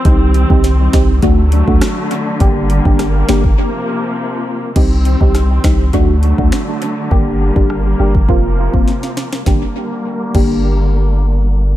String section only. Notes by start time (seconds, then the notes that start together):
Already playing: C4
0.05 D#3 G3
1.23 D3 F#3 A3
2.41 G3 A#3
3.58 C3 F3
4.76 D#3 G3 C4
5.93 D3 F#3 A3
7.11 G3 A#3
8.29 C3 F3
9.47 D3 G3 A#3